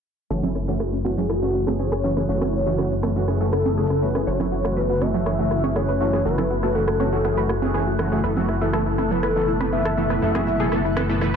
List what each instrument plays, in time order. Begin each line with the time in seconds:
0.30 analog synth bass F#1, ambient pad C#3 F#3 A3 E4, supersaw synth E3 A3 C#4 F#4, synth pluck A4, synth texture F#6
0.43 supersaw synth E3 A3 C#4 E4, synth pluck C#4, high conga, low conga
0.55 synth pluck C#4, cross-stick
0.68 supersaw synth E3 A3 C#4 F#4, synth pluck C#4
0.80 supersaw synth E3 A3 C#4 F#4, synth pluck G#4, cross-stick
0.93 synth pluck C#4
1.05 supersaw synth E3 A3 C#4 F#4, synth pluck C#4, analog synth lead F#4, cross-stick, high conga
1.17 supersaw synth E3 A3 C#4 F#4, synth pluck C#4, analog synth lead G#4, low conga
1.29 supersaw synth E3 A3 C#4 G#4, analog synth lead F#4, synth pluck A4, cross-stick
1.42 supersaw synth E3 A3 C#4 F#4, synth pluck C#4
1.54 synth pluck C#4
1.67 supersaw synth E3 A3 C#4 G#4, synth pluck A4, cross-stick, high conga
1.79 supersaw synth E3 A3 C#4 G#4, synth pluck C#4, analog synth lead C#5
1.92 synth pluck G#4, cross-stick
2.04 supersaw synth E3 A3 C#4 F#4, synth pluck C#4
2.17 supersaw synth E3 A3 C#4 G#4, synth pluck C#4, cross-stick
2.29 analog synth bass F#1, supersaw synth E3 A3 C#4 F#4, synth pluck C#4, analog synth lead C#5
2.41 supersaw synth E3 A3 C#4 E4, synth pluck F#4, cross-stick, high conga
2.54 synth pluck C#4
2.66 supersaw synth E3 A3 C#4 F#4, synth pluck F#4
2.78 supersaw synth E3 A3 C#4 F#4, synth pluck C#4, cross-stick
2.91 synth pluck C#4
3.03 supersaw synth E3 A3 C#4 F#4, synth pluck A4, cross-stick, high conga
3.16 supersaw synth E3 A3 C#4 F#4, synth pluck C#4
3.28 supersaw synth E3 A3 C#4 G#4, synth pluck C#4, cross-stick
3.41 supersaw synth E3 A3 C#4 F#4, synth pluck A4
3.53 synth pluck C#4, analog synth lead A4, cross-stick
3.65 supersaw synth E3 A3 C#4 G#4, synth pluck C#4, high conga
3.78 supersaw synth E3 A3 C#4 G#4, synth pluck G#4
3.90 synth pluck C#4, cross-stick
4.02 supersaw synth E3 A3 C#4 F#4, analog synth lead B4
4.15 supersaw synth E3 A3 C#4 G#4, synth pluck C#4, cross-stick
4.27 analog synth bass F#1, supersaw synth E3 A3 C#4 F#4, analog synth lead C#5, synth pluck C#5
4.40 supersaw synth E3 A3 C#4 E4, synth pluck F#4, cross-stick, high conga, low conga
4.52 synth pluck F#4
4.65 supersaw synth E3 A3 C#4 F#4, synth pluck F#4, cross-stick
4.77 supersaw synth E3 A3 C#4 F#4, synth pluck B4, analog synth lead B4
4.90 synth pluck F#4
5.01 supersaw synth E3 A3 C#4 F#4, synth pluck F#4, analog synth lead E5, cross-stick, high conga
5.14 supersaw synth E3 A3 C#4 F#4, synth pluck F#4, low conga
5.26 supersaw synth E3 A3 C#4 G#4, synth pluck C#5, cross-stick
5.39 supersaw synth E3 A3 C#4 F#4, synth pluck F#4
5.51 synth pluck F#4, cross-stick
5.64 supersaw synth E3 A3 C#4 G#4, synth pluck C#5, high conga
5.76 supersaw synth E3 A3 C#4 G#4, synth pluck F#4, analog synth lead C#5, cross-stick
5.89 synth pluck B4
6.00 supersaw synth E3 A3 C#4 F#4, synth pluck F#4
6.13 supersaw synth E3 A3 C#4 G#4, synth pluck F#4, cross-stick
6.25 analog synth bass F#1, supersaw synth E3 A3 C#4 F#4, synth pluck F#4, analog synth lead B4
6.38 supersaw synth E3 A3 C#4 E4, synth pluck A4, cross-stick, high conga, low conga
6.50 synth pluck F#4
6.63 supersaw synth E3 A3 C#4 F#4, synth pluck A4, cross-stick
6.75 supersaw synth E3 A3 C#4 F#4, synth pluck F#4, analog synth lead A4
6.88 synth pluck F#4, cross-stick
7.00 supersaw synth E3 A3 C#4 F#4, synth pluck C#5, high conga
7.13 supersaw synth E3 A3 C#4 F#4, synth pluck F#4
7.25 supersaw synth E3 A3 C#4 G#4, synth pluck F#4, cross-stick
7.37 supersaw synth E3 A3 C#4 F#4, synth pluck B4
7.49 synth pluck F#4, cross-stick
7.62 supersaw synth E3 A3 C#4 G#4, synth pluck F#4, high conga
7.74 supersaw synth E3 A3 C#4 G#4, synth pluck G#4, cross-stick
7.87 synth pluck F#4
7.99 supersaw synth E3 A3 C#4 F#4, cross-stick
8.12 supersaw synth E3 A3 C#4 G#4, synth pluck F#4
8.23 analog synth bass F#1, ambient pad B2 E3, supersaw synth E3 A3 B3 A4, synth pluck B4, shaker
8.37 supersaw synth E3 A3 B3 F#4, synth pluck E4, high conga, low conga
8.49 synth pluck E4, cross-stick, shaker
8.61 supersaw synth E3 A3 B3 A4, synth pluck E4, shaker
8.73 supersaw synth E3 A3 B3 A4, synth pluck A4, cross-stick, shaker
8.86 synth pluck E4, shaker
8.98 supersaw synth E3 A3 B3 A4, synth pluck E4, analog synth lead A4, cross-stick, high conga, shaker
9.11 supersaw synth E3 A3 B3 A4, synth pluck E4, analog synth lead B4, low conga, shaker
9.23 supersaw synth E3 A3 B3 B4, analog synth lead A4, synth pluck B4, cross-stick, shaker
9.36 supersaw synth E3 A3 B3 A4, synth pluck E4
9.48 synth pluck E4, shaker
9.60 supersaw synth E3 A3 B3 B4, synth pluck B4, cross-stick, high conga, shaker
9.72 supersaw synth E3 A3 B3 B4, synth pluck E4, analog synth lead E5, shaker
9.85 synth pluck A4, cross-stick, shaker
9.97 supersaw synth E3 A3 B3 A4, synth pluck E4, shaker
10.10 supersaw synth E3 A3 B3 B4, synth pluck E4, cross-stick, shaker
10.22 analog synth bass F#1, supersaw synth E3 A3 B3 A4, synth pluck E4, analog synth lead E5, shaker
10.35 supersaw synth E3 A3 B3 F#4, synth pluck G#4, cross-stick, high conga, shaker
10.47 synth pluck E4, shaker
10.60 supersaw synth E3 A3 B3 A4, synth pluck G#4, shaker
10.72 supersaw synth E3 A3 B3 A4, synth pluck E4, cross-stick, shaker
10.85 synth pluck E4, shaker
10.96 supersaw synth E3 A3 B3 A4, synth pluck B4, cross-stick, high conga, shaker
11.09 supersaw synth E3 A3 B3 A4, synth pluck E4, shaker
11.21 supersaw synth E3 A3 B3 B4, synth pluck E4, cross-stick, shaker